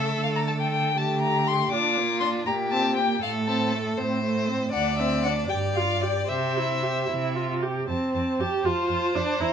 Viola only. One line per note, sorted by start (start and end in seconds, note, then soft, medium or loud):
0.00 0.97 A3 soft
0.97 1.70 A3 soft
1.72 1.99 D4 soft
1.97 2.23 A#3 soft
2.21 2.46 D4 soft
2.47 2.74 A#3 soft
2.73 2.99 C4 soft
2.97 3.22 A#3 soft
3.22 3.50 A3 soft
3.48 3.75 C4 soft
3.74 4.00 A3 soft
3.98 4.23 C4 soft
4.23 4.49 A3 soft
4.48 4.73 C4 soft
4.74 5.01 D4 soft
5.00 5.27 C4 soft
5.25 5.50 D4 soft
5.50 5.78 G4 soft
5.77 6.04 F4 soft
6.03 6.29 G4 soft
6.29 6.58 G4 soft
6.57 6.84 E4 soft
6.83 7.09 G4 soft
7.10 7.37 E4 soft
7.35 7.64 F4 soft
7.62 7.88 G4 soft
7.89 8.42 C4 soft
8.40 8.67 G4 soft
8.65 9.17 F4 soft
9.15 9.42 D4 soft
9.40 9.53 E4 soft